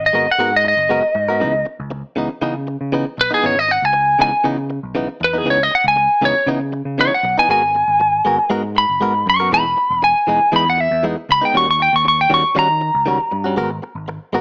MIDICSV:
0, 0, Header, 1, 6, 480
1, 0, Start_track
1, 0, Key_signature, 5, "minor"
1, 0, Tempo, 506757
1, 1335, Time_signature, 4, 2, 24, 8
1, 13648, End_track
2, 0, Start_track
2, 0, Title_t, "Lead electric guitar"
2, 0, Program_c, 0, 29
2, 59, Note_on_c, 0, 75, 82
2, 274, Note_off_c, 0, 75, 0
2, 298, Note_on_c, 0, 78, 86
2, 513, Note_off_c, 0, 78, 0
2, 535, Note_on_c, 0, 75, 98
2, 628, Note_off_c, 0, 75, 0
2, 646, Note_on_c, 0, 75, 85
2, 1562, Note_off_c, 0, 75, 0
2, 3039, Note_on_c, 0, 71, 103
2, 3149, Note_off_c, 0, 71, 0
2, 3164, Note_on_c, 0, 68, 104
2, 3262, Note_off_c, 0, 68, 0
2, 3277, Note_on_c, 0, 73, 88
2, 3400, Note_off_c, 0, 73, 0
2, 3400, Note_on_c, 0, 75, 91
2, 3517, Note_off_c, 0, 75, 0
2, 3517, Note_on_c, 0, 78, 101
2, 3646, Note_off_c, 0, 78, 0
2, 3646, Note_on_c, 0, 80, 91
2, 3976, Note_off_c, 0, 80, 0
2, 3993, Note_on_c, 0, 80, 106
2, 4216, Note_off_c, 0, 80, 0
2, 4967, Note_on_c, 0, 71, 94
2, 5096, Note_off_c, 0, 71, 0
2, 5096, Note_on_c, 0, 68, 95
2, 5188, Note_off_c, 0, 68, 0
2, 5212, Note_on_c, 0, 73, 82
2, 5335, Note_off_c, 0, 73, 0
2, 5335, Note_on_c, 0, 75, 95
2, 5427, Note_off_c, 0, 75, 0
2, 5446, Note_on_c, 0, 78, 90
2, 5553, Note_off_c, 0, 78, 0
2, 5569, Note_on_c, 0, 80, 93
2, 5897, Note_off_c, 0, 80, 0
2, 5921, Note_on_c, 0, 73, 116
2, 6140, Note_off_c, 0, 73, 0
2, 6636, Note_on_c, 0, 73, 98
2, 6748, Note_off_c, 0, 73, 0
2, 6767, Note_on_c, 0, 78, 77
2, 6986, Note_off_c, 0, 78, 0
2, 7002, Note_on_c, 0, 80, 99
2, 7100, Note_off_c, 0, 80, 0
2, 7111, Note_on_c, 0, 80, 96
2, 8033, Note_off_c, 0, 80, 0
2, 8317, Note_on_c, 0, 83, 82
2, 8771, Note_off_c, 0, 83, 0
2, 8805, Note_on_c, 0, 85, 89
2, 9022, Note_off_c, 0, 85, 0
2, 9036, Note_on_c, 0, 83, 116
2, 9490, Note_off_c, 0, 83, 0
2, 9509, Note_on_c, 0, 80, 93
2, 9967, Note_off_c, 0, 80, 0
2, 10001, Note_on_c, 0, 83, 86
2, 10110, Note_off_c, 0, 83, 0
2, 10131, Note_on_c, 0, 78, 78
2, 10233, Note_off_c, 0, 78, 0
2, 10233, Note_on_c, 0, 76, 88
2, 10456, Note_off_c, 0, 76, 0
2, 10721, Note_on_c, 0, 83, 114
2, 10830, Note_off_c, 0, 83, 0
2, 10847, Note_on_c, 0, 79, 95
2, 10943, Note_off_c, 0, 79, 0
2, 10960, Note_on_c, 0, 85, 93
2, 11069, Note_off_c, 0, 85, 0
2, 11087, Note_on_c, 0, 85, 98
2, 11184, Note_off_c, 0, 85, 0
2, 11199, Note_on_c, 0, 79, 91
2, 11309, Note_off_c, 0, 79, 0
2, 11326, Note_on_c, 0, 85, 85
2, 11423, Note_off_c, 0, 85, 0
2, 11444, Note_on_c, 0, 85, 92
2, 11552, Note_off_c, 0, 85, 0
2, 11565, Note_on_c, 0, 79, 80
2, 11663, Note_off_c, 0, 79, 0
2, 11687, Note_on_c, 0, 85, 102
2, 11903, Note_off_c, 0, 85, 0
2, 11923, Note_on_c, 0, 82, 105
2, 13310, Note_off_c, 0, 82, 0
2, 13648, End_track
3, 0, Start_track
3, 0, Title_t, "Clean electric guitar"
3, 0, Program_c, 1, 27
3, 125, Note_on_c, 1, 56, 53
3, 134, Note_on_c, 1, 59, 50
3, 139, Note_on_c, 1, 66, 57
3, 144, Note_on_c, 1, 70, 65
3, 245, Note_off_c, 1, 70, 0
3, 254, Note_off_c, 1, 66, 0
3, 257, Note_off_c, 1, 56, 0
3, 259, Note_off_c, 1, 59, 0
3, 368, Note_on_c, 1, 56, 76
3, 375, Note_on_c, 1, 59, 79
3, 380, Note_on_c, 1, 66, 83
3, 383, Note_on_c, 1, 70, 82
3, 483, Note_off_c, 1, 70, 0
3, 490, Note_off_c, 1, 66, 0
3, 492, Note_off_c, 1, 59, 0
3, 498, Note_off_c, 1, 56, 0
3, 846, Note_on_c, 1, 56, 59
3, 854, Note_on_c, 1, 59, 64
3, 859, Note_on_c, 1, 66, 63
3, 865, Note_on_c, 1, 70, 68
3, 963, Note_off_c, 1, 70, 0
3, 972, Note_off_c, 1, 66, 0
3, 974, Note_off_c, 1, 59, 0
3, 977, Note_off_c, 1, 56, 0
3, 1217, Note_on_c, 1, 70, 55
3, 1229, Note_on_c, 1, 66, 52
3, 1236, Note_on_c, 1, 59, 49
3, 1326, Note_off_c, 1, 59, 0
3, 1328, Note_on_c, 1, 49, 76
3, 1332, Note_off_c, 1, 70, 0
3, 1333, Note_on_c, 1, 52, 80
3, 1338, Note_off_c, 1, 66, 0
3, 1338, Note_on_c, 1, 59, 79
3, 1342, Note_on_c, 1, 63, 81
3, 1448, Note_off_c, 1, 63, 0
3, 1454, Note_off_c, 1, 59, 0
3, 1458, Note_off_c, 1, 49, 0
3, 1461, Note_off_c, 1, 52, 0
3, 2044, Note_on_c, 1, 49, 64
3, 2053, Note_on_c, 1, 52, 73
3, 2063, Note_on_c, 1, 59, 66
3, 2068, Note_on_c, 1, 63, 70
3, 2163, Note_off_c, 1, 63, 0
3, 2171, Note_off_c, 1, 59, 0
3, 2173, Note_off_c, 1, 52, 0
3, 2176, Note_off_c, 1, 49, 0
3, 2287, Note_on_c, 1, 49, 96
3, 2292, Note_on_c, 1, 52, 107
3, 2296, Note_on_c, 1, 59, 86
3, 2300, Note_on_c, 1, 63, 99
3, 2404, Note_off_c, 1, 63, 0
3, 2412, Note_off_c, 1, 59, 0
3, 2415, Note_off_c, 1, 52, 0
3, 2417, Note_off_c, 1, 49, 0
3, 2769, Note_on_c, 1, 49, 75
3, 2775, Note_on_c, 1, 52, 78
3, 2781, Note_on_c, 1, 59, 77
3, 2789, Note_on_c, 1, 63, 81
3, 2887, Note_off_c, 1, 63, 0
3, 2893, Note_off_c, 1, 59, 0
3, 2896, Note_off_c, 1, 52, 0
3, 2898, Note_off_c, 1, 49, 0
3, 3131, Note_on_c, 1, 63, 61
3, 3144, Note_on_c, 1, 59, 49
3, 3153, Note_on_c, 1, 52, 40
3, 3240, Note_off_c, 1, 52, 0
3, 3245, Note_off_c, 1, 59, 0
3, 3248, Note_on_c, 1, 49, 70
3, 3249, Note_off_c, 1, 63, 0
3, 3252, Note_on_c, 1, 52, 61
3, 3256, Note_on_c, 1, 59, 79
3, 3260, Note_on_c, 1, 63, 69
3, 3366, Note_off_c, 1, 63, 0
3, 3369, Note_off_c, 1, 59, 0
3, 3375, Note_off_c, 1, 52, 0
3, 3377, Note_off_c, 1, 49, 0
3, 3966, Note_on_c, 1, 49, 57
3, 3976, Note_on_c, 1, 52, 59
3, 3980, Note_on_c, 1, 59, 60
3, 3985, Note_on_c, 1, 63, 60
3, 4079, Note_off_c, 1, 63, 0
3, 4087, Note_off_c, 1, 59, 0
3, 4090, Note_off_c, 1, 52, 0
3, 4096, Note_off_c, 1, 49, 0
3, 4204, Note_on_c, 1, 49, 82
3, 4209, Note_on_c, 1, 52, 81
3, 4215, Note_on_c, 1, 59, 90
3, 4217, Note_on_c, 1, 63, 87
3, 4325, Note_off_c, 1, 63, 0
3, 4333, Note_off_c, 1, 59, 0
3, 4334, Note_off_c, 1, 52, 0
3, 4336, Note_off_c, 1, 49, 0
3, 4686, Note_on_c, 1, 49, 74
3, 4693, Note_on_c, 1, 52, 74
3, 4700, Note_on_c, 1, 59, 85
3, 4706, Note_on_c, 1, 63, 78
3, 4808, Note_off_c, 1, 63, 0
3, 4813, Note_off_c, 1, 59, 0
3, 4816, Note_off_c, 1, 49, 0
3, 4820, Note_off_c, 1, 52, 0
3, 5052, Note_on_c, 1, 63, 51
3, 5062, Note_on_c, 1, 59, 49
3, 5070, Note_on_c, 1, 52, 47
3, 5159, Note_off_c, 1, 52, 0
3, 5163, Note_off_c, 1, 59, 0
3, 5167, Note_on_c, 1, 49, 84
3, 5169, Note_off_c, 1, 63, 0
3, 5171, Note_on_c, 1, 52, 79
3, 5174, Note_on_c, 1, 59, 70
3, 5179, Note_on_c, 1, 63, 81
3, 5286, Note_off_c, 1, 63, 0
3, 5290, Note_off_c, 1, 59, 0
3, 5294, Note_off_c, 1, 52, 0
3, 5297, Note_off_c, 1, 49, 0
3, 5887, Note_on_c, 1, 49, 65
3, 5894, Note_on_c, 1, 52, 64
3, 5900, Note_on_c, 1, 59, 64
3, 5906, Note_on_c, 1, 63, 57
3, 6006, Note_off_c, 1, 63, 0
3, 6008, Note_off_c, 1, 59, 0
3, 6014, Note_off_c, 1, 52, 0
3, 6017, Note_off_c, 1, 49, 0
3, 6127, Note_on_c, 1, 49, 74
3, 6134, Note_on_c, 1, 52, 82
3, 6140, Note_on_c, 1, 59, 86
3, 6142, Note_on_c, 1, 63, 85
3, 6242, Note_off_c, 1, 63, 0
3, 6248, Note_off_c, 1, 59, 0
3, 6253, Note_off_c, 1, 52, 0
3, 6256, Note_off_c, 1, 49, 0
3, 6612, Note_on_c, 1, 49, 63
3, 6620, Note_on_c, 1, 52, 78
3, 6626, Note_on_c, 1, 59, 66
3, 6631, Note_on_c, 1, 63, 70
3, 6736, Note_off_c, 1, 63, 0
3, 6739, Note_off_c, 1, 49, 0
3, 6740, Note_off_c, 1, 59, 0
3, 6743, Note_off_c, 1, 52, 0
3, 6987, Note_on_c, 1, 63, 55
3, 6995, Note_on_c, 1, 59, 54
3, 7005, Note_on_c, 1, 52, 47
3, 7093, Note_off_c, 1, 52, 0
3, 7093, Note_off_c, 1, 59, 0
3, 7096, Note_off_c, 1, 63, 0
3, 7097, Note_on_c, 1, 56, 71
3, 7104, Note_on_c, 1, 59, 71
3, 7107, Note_on_c, 1, 66, 74
3, 7114, Note_on_c, 1, 70, 74
3, 7217, Note_off_c, 1, 70, 0
3, 7221, Note_off_c, 1, 56, 0
3, 7222, Note_off_c, 1, 66, 0
3, 7225, Note_off_c, 1, 59, 0
3, 7813, Note_on_c, 1, 56, 60
3, 7822, Note_on_c, 1, 59, 63
3, 7828, Note_on_c, 1, 66, 77
3, 7832, Note_on_c, 1, 70, 72
3, 7933, Note_off_c, 1, 70, 0
3, 7937, Note_off_c, 1, 66, 0
3, 7939, Note_off_c, 1, 56, 0
3, 7944, Note_off_c, 1, 59, 0
3, 8049, Note_on_c, 1, 56, 97
3, 8055, Note_on_c, 1, 59, 100
3, 8057, Note_on_c, 1, 66, 105
3, 8063, Note_on_c, 1, 70, 96
3, 8166, Note_off_c, 1, 70, 0
3, 8174, Note_off_c, 1, 66, 0
3, 8177, Note_off_c, 1, 56, 0
3, 8178, Note_off_c, 1, 59, 0
3, 8531, Note_on_c, 1, 56, 63
3, 8539, Note_on_c, 1, 59, 66
3, 8546, Note_on_c, 1, 66, 70
3, 8549, Note_on_c, 1, 70, 69
3, 8649, Note_off_c, 1, 70, 0
3, 8656, Note_off_c, 1, 66, 0
3, 8659, Note_off_c, 1, 56, 0
3, 8660, Note_off_c, 1, 59, 0
3, 8902, Note_on_c, 1, 70, 58
3, 8913, Note_on_c, 1, 66, 47
3, 8922, Note_on_c, 1, 59, 43
3, 9011, Note_off_c, 1, 59, 0
3, 9011, Note_on_c, 1, 52, 59
3, 9014, Note_off_c, 1, 70, 0
3, 9017, Note_on_c, 1, 56, 68
3, 9019, Note_off_c, 1, 66, 0
3, 9023, Note_on_c, 1, 59, 69
3, 9025, Note_on_c, 1, 63, 65
3, 9129, Note_off_c, 1, 63, 0
3, 9134, Note_off_c, 1, 59, 0
3, 9138, Note_off_c, 1, 52, 0
3, 9138, Note_off_c, 1, 56, 0
3, 9727, Note_on_c, 1, 52, 49
3, 9737, Note_on_c, 1, 56, 61
3, 9742, Note_on_c, 1, 59, 56
3, 9749, Note_on_c, 1, 63, 70
3, 9845, Note_off_c, 1, 63, 0
3, 9849, Note_off_c, 1, 59, 0
3, 9853, Note_off_c, 1, 56, 0
3, 9857, Note_off_c, 1, 52, 0
3, 9964, Note_on_c, 1, 52, 87
3, 9972, Note_on_c, 1, 56, 90
3, 9974, Note_on_c, 1, 59, 92
3, 9981, Note_on_c, 1, 63, 89
3, 10081, Note_off_c, 1, 63, 0
3, 10085, Note_off_c, 1, 59, 0
3, 10091, Note_off_c, 1, 56, 0
3, 10095, Note_off_c, 1, 52, 0
3, 10449, Note_on_c, 1, 52, 59
3, 10456, Note_on_c, 1, 56, 70
3, 10461, Note_on_c, 1, 59, 76
3, 10467, Note_on_c, 1, 63, 71
3, 10566, Note_off_c, 1, 63, 0
3, 10574, Note_off_c, 1, 59, 0
3, 10577, Note_off_c, 1, 52, 0
3, 10578, Note_off_c, 1, 56, 0
3, 10812, Note_on_c, 1, 63, 59
3, 10824, Note_on_c, 1, 59, 48
3, 10831, Note_on_c, 1, 56, 43
3, 10928, Note_on_c, 1, 51, 65
3, 10929, Note_off_c, 1, 56, 0
3, 10929, Note_off_c, 1, 63, 0
3, 10932, Note_off_c, 1, 59, 0
3, 10932, Note_on_c, 1, 55, 73
3, 10935, Note_on_c, 1, 61, 63
3, 10941, Note_on_c, 1, 66, 69
3, 11046, Note_off_c, 1, 66, 0
3, 11051, Note_off_c, 1, 61, 0
3, 11056, Note_off_c, 1, 55, 0
3, 11057, Note_off_c, 1, 51, 0
3, 11646, Note_on_c, 1, 51, 56
3, 11652, Note_on_c, 1, 55, 59
3, 11659, Note_on_c, 1, 61, 68
3, 11665, Note_on_c, 1, 66, 61
3, 11769, Note_off_c, 1, 66, 0
3, 11776, Note_off_c, 1, 51, 0
3, 11776, Note_off_c, 1, 61, 0
3, 11779, Note_off_c, 1, 55, 0
3, 11886, Note_on_c, 1, 51, 77
3, 11892, Note_on_c, 1, 55, 77
3, 11898, Note_on_c, 1, 61, 99
3, 11900, Note_on_c, 1, 66, 91
3, 12006, Note_off_c, 1, 66, 0
3, 12012, Note_off_c, 1, 61, 0
3, 12016, Note_off_c, 1, 51, 0
3, 12019, Note_off_c, 1, 55, 0
3, 12368, Note_on_c, 1, 51, 63
3, 12377, Note_on_c, 1, 55, 60
3, 12384, Note_on_c, 1, 61, 63
3, 12389, Note_on_c, 1, 66, 71
3, 12486, Note_off_c, 1, 66, 0
3, 12492, Note_off_c, 1, 61, 0
3, 12497, Note_off_c, 1, 51, 0
3, 12497, Note_off_c, 1, 55, 0
3, 12732, Note_on_c, 1, 66, 53
3, 12746, Note_on_c, 1, 61, 56
3, 12754, Note_on_c, 1, 55, 53
3, 12843, Note_off_c, 1, 55, 0
3, 12847, Note_off_c, 1, 66, 0
3, 12847, Note_on_c, 1, 56, 82
3, 12850, Note_off_c, 1, 61, 0
3, 12854, Note_on_c, 1, 59, 78
3, 12858, Note_on_c, 1, 66, 80
3, 12861, Note_on_c, 1, 70, 87
3, 12971, Note_off_c, 1, 70, 0
3, 12977, Note_off_c, 1, 56, 0
3, 12977, Note_off_c, 1, 66, 0
3, 12980, Note_off_c, 1, 59, 0
3, 13573, Note_on_c, 1, 56, 63
3, 13584, Note_on_c, 1, 59, 76
3, 13589, Note_on_c, 1, 66, 81
3, 13595, Note_on_c, 1, 70, 86
3, 13648, Note_off_c, 1, 56, 0
3, 13648, Note_off_c, 1, 59, 0
3, 13648, Note_off_c, 1, 66, 0
3, 13648, Note_off_c, 1, 70, 0
3, 13648, End_track
4, 0, Start_track
4, 0, Title_t, "Picked electric bass"
4, 0, Program_c, 2, 34
4, 127, Note_on_c, 2, 32, 79
4, 240, Note_off_c, 2, 32, 0
4, 365, Note_on_c, 2, 44, 91
4, 688, Note_off_c, 2, 44, 0
4, 729, Note_on_c, 2, 30, 81
4, 943, Note_off_c, 2, 30, 0
4, 1090, Note_on_c, 2, 44, 86
4, 1335, Note_on_c, 2, 37, 82
4, 1349, Note_off_c, 2, 44, 0
4, 1544, Note_off_c, 2, 37, 0
4, 1702, Note_on_c, 2, 37, 102
4, 1910, Note_off_c, 2, 37, 0
4, 2052, Note_on_c, 2, 37, 73
4, 2163, Note_off_c, 2, 37, 0
4, 2289, Note_on_c, 2, 49, 104
4, 2610, Note_off_c, 2, 49, 0
4, 2659, Note_on_c, 2, 49, 96
4, 2868, Note_off_c, 2, 49, 0
4, 3011, Note_on_c, 2, 35, 74
4, 3123, Note_off_c, 2, 35, 0
4, 3254, Note_on_c, 2, 32, 89
4, 3573, Note_off_c, 2, 32, 0
4, 3621, Note_on_c, 2, 37, 88
4, 3928, Note_off_c, 2, 37, 0
4, 3970, Note_on_c, 2, 37, 91
4, 4082, Note_off_c, 2, 37, 0
4, 4208, Note_on_c, 2, 49, 101
4, 4529, Note_off_c, 2, 49, 0
4, 4578, Note_on_c, 2, 35, 91
4, 4787, Note_off_c, 2, 35, 0
4, 4933, Note_on_c, 2, 40, 80
4, 5164, Note_off_c, 2, 40, 0
4, 5164, Note_on_c, 2, 37, 92
4, 5376, Note_off_c, 2, 37, 0
4, 5535, Note_on_c, 2, 37, 102
4, 5745, Note_off_c, 2, 37, 0
4, 5884, Note_on_c, 2, 37, 74
4, 5998, Note_off_c, 2, 37, 0
4, 6123, Note_on_c, 2, 49, 94
4, 6446, Note_off_c, 2, 49, 0
4, 6491, Note_on_c, 2, 49, 87
4, 6703, Note_off_c, 2, 49, 0
4, 6851, Note_on_c, 2, 35, 89
4, 6962, Note_off_c, 2, 35, 0
4, 7087, Note_on_c, 2, 32, 93
4, 7409, Note_off_c, 2, 32, 0
4, 7462, Note_on_c, 2, 32, 93
4, 7768, Note_off_c, 2, 32, 0
4, 7818, Note_on_c, 2, 32, 81
4, 7926, Note_off_c, 2, 32, 0
4, 8052, Note_on_c, 2, 44, 92
4, 8371, Note_off_c, 2, 44, 0
4, 8425, Note_on_c, 2, 30, 82
4, 8521, Note_off_c, 2, 30, 0
4, 8530, Note_on_c, 2, 44, 84
4, 8747, Note_off_c, 2, 44, 0
4, 8772, Note_on_c, 2, 42, 85
4, 9004, Note_on_c, 2, 28, 84
4, 9018, Note_off_c, 2, 42, 0
4, 9216, Note_off_c, 2, 28, 0
4, 9381, Note_on_c, 2, 28, 108
4, 9589, Note_off_c, 2, 28, 0
4, 9732, Note_on_c, 2, 28, 79
4, 9843, Note_off_c, 2, 28, 0
4, 9976, Note_on_c, 2, 40, 108
4, 10293, Note_off_c, 2, 40, 0
4, 10336, Note_on_c, 2, 40, 101
4, 10546, Note_off_c, 2, 40, 0
4, 10695, Note_on_c, 2, 37, 90
4, 10804, Note_off_c, 2, 37, 0
4, 10929, Note_on_c, 2, 39, 93
4, 11250, Note_off_c, 2, 39, 0
4, 11299, Note_on_c, 2, 39, 89
4, 11607, Note_off_c, 2, 39, 0
4, 11651, Note_on_c, 2, 39, 83
4, 11762, Note_off_c, 2, 39, 0
4, 11893, Note_on_c, 2, 51, 97
4, 12212, Note_off_c, 2, 51, 0
4, 12262, Note_on_c, 2, 37, 95
4, 12470, Note_off_c, 2, 37, 0
4, 12618, Note_on_c, 2, 43, 86
4, 12854, Note_on_c, 2, 32, 103
4, 12868, Note_off_c, 2, 43, 0
4, 13062, Note_off_c, 2, 32, 0
4, 13215, Note_on_c, 2, 32, 101
4, 13426, Note_off_c, 2, 32, 0
4, 13571, Note_on_c, 2, 32, 82
4, 13648, Note_off_c, 2, 32, 0
4, 13648, End_track
5, 0, Start_track
5, 0, Title_t, "Muted clean electric guitar strokes"
5, 256, Note_on_c, 9, 29, 41
5, 351, Note_off_c, 9, 29, 0
5, 494, Note_on_c, 9, 29, 39
5, 589, Note_off_c, 9, 29, 0
5, 605, Note_on_c, 9, 29, 37
5, 700, Note_off_c, 9, 29, 0
5, 975, Note_on_c, 9, 29, 43
5, 1069, Note_off_c, 9, 29, 0
5, 1085, Note_on_c, 9, 29, 31
5, 1180, Note_off_c, 9, 29, 0
5, 1459, Note_on_c, 9, 29, 47
5, 1554, Note_off_c, 9, 29, 0
5, 1568, Note_on_c, 9, 29, 43
5, 1662, Note_off_c, 9, 29, 0
5, 1805, Note_on_c, 9, 29, 48
5, 1900, Note_off_c, 9, 29, 0
5, 2174, Note_on_c, 9, 29, 51
5, 2269, Note_off_c, 9, 29, 0
5, 2415, Note_on_c, 9, 29, 51
5, 2510, Note_off_c, 9, 29, 0
5, 2531, Note_on_c, 9, 29, 41
5, 2625, Note_off_c, 9, 29, 0
5, 2899, Note_on_c, 9, 29, 45
5, 2993, Note_off_c, 9, 29, 0
5, 3007, Note_on_c, 9, 29, 37
5, 3102, Note_off_c, 9, 29, 0
5, 3378, Note_on_c, 9, 29, 44
5, 3472, Note_off_c, 9, 29, 0
5, 3488, Note_on_c, 9, 29, 38
5, 3583, Note_off_c, 9, 29, 0
5, 3723, Note_on_c, 9, 29, 42
5, 3817, Note_off_c, 9, 29, 0
5, 4091, Note_on_c, 9, 29, 43
5, 4185, Note_off_c, 9, 29, 0
5, 4336, Note_on_c, 9, 29, 55
5, 4431, Note_off_c, 9, 29, 0
5, 4449, Note_on_c, 9, 29, 43
5, 4543, Note_off_c, 9, 29, 0
5, 4819, Note_on_c, 9, 29, 46
5, 4914, Note_off_c, 9, 29, 0
5, 4929, Note_on_c, 9, 29, 35
5, 5023, Note_off_c, 9, 29, 0
5, 5297, Note_on_c, 9, 29, 42
5, 5392, Note_off_c, 9, 29, 0
5, 5406, Note_on_c, 9, 29, 40
5, 5501, Note_off_c, 9, 29, 0
5, 5646, Note_on_c, 9, 29, 39
5, 5741, Note_off_c, 9, 29, 0
5, 6017, Note_on_c, 9, 29, 53
5, 6112, Note_off_c, 9, 29, 0
5, 6253, Note_on_c, 9, 29, 47
5, 6348, Note_off_c, 9, 29, 0
5, 6368, Note_on_c, 9, 29, 52
5, 6463, Note_off_c, 9, 29, 0
5, 6748, Note_on_c, 9, 29, 39
5, 6842, Note_off_c, 9, 29, 0
5, 6860, Note_on_c, 9, 29, 36
5, 6954, Note_off_c, 9, 29, 0
5, 7228, Note_on_c, 9, 29, 47
5, 7323, Note_off_c, 9, 29, 0
5, 7339, Note_on_c, 9, 29, 36
5, 7434, Note_off_c, 9, 29, 0
5, 7577, Note_on_c, 9, 29, 42
5, 7671, Note_off_c, 9, 29, 0
5, 7944, Note_on_c, 9, 29, 48
5, 8039, Note_off_c, 9, 29, 0
5, 8178, Note_on_c, 9, 29, 44
5, 8272, Note_off_c, 9, 29, 0
5, 8290, Note_on_c, 9, 29, 41
5, 8385, Note_off_c, 9, 29, 0
5, 8661, Note_on_c, 9, 29, 45
5, 8755, Note_off_c, 9, 29, 0
5, 8779, Note_on_c, 9, 29, 39
5, 8874, Note_off_c, 9, 29, 0
5, 9140, Note_on_c, 9, 29, 44
5, 9235, Note_off_c, 9, 29, 0
5, 9253, Note_on_c, 9, 29, 38
5, 9347, Note_off_c, 9, 29, 0
5, 9494, Note_on_c, 9, 29, 41
5, 9589, Note_off_c, 9, 29, 0
5, 10092, Note_on_c, 9, 29, 42
5, 10187, Note_off_c, 9, 29, 0
5, 10205, Note_on_c, 9, 29, 36
5, 10300, Note_off_c, 9, 29, 0
5, 10578, Note_on_c, 9, 29, 41
5, 10672, Note_off_c, 9, 29, 0
5, 10696, Note_on_c, 9, 29, 33
5, 10790, Note_off_c, 9, 29, 0
5, 11058, Note_on_c, 9, 29, 45
5, 11152, Note_off_c, 9, 29, 0
5, 11168, Note_on_c, 9, 29, 36
5, 11263, Note_off_c, 9, 29, 0
5, 11413, Note_on_c, 9, 29, 41
5, 11507, Note_off_c, 9, 29, 0
5, 11780, Note_on_c, 9, 29, 51
5, 11875, Note_off_c, 9, 29, 0
5, 12134, Note_on_c, 9, 29, 46
5, 12229, Note_off_c, 9, 29, 0
5, 12498, Note_on_c, 9, 29, 51
5, 12592, Note_off_c, 9, 29, 0
5, 12611, Note_on_c, 9, 29, 45
5, 12706, Note_off_c, 9, 29, 0
5, 13095, Note_on_c, 9, 29, 39
5, 13189, Note_off_c, 9, 29, 0
5, 13337, Note_on_c, 9, 29, 46
5, 13432, Note_off_c, 9, 29, 0
5, 13648, End_track
6, 0, Start_track
6, 0, Title_t, "Muted picked electric bass strokes"
6, 2183, Note_on_c, 9, 29, 34
6, 2277, Note_off_c, 9, 29, 0
6, 6014, Note_on_c, 9, 29, 34
6, 6109, Note_off_c, 9, 29, 0
6, 9860, Note_on_c, 9, 29, 34
6, 9955, Note_off_c, 9, 29, 0
6, 13648, End_track
0, 0, End_of_file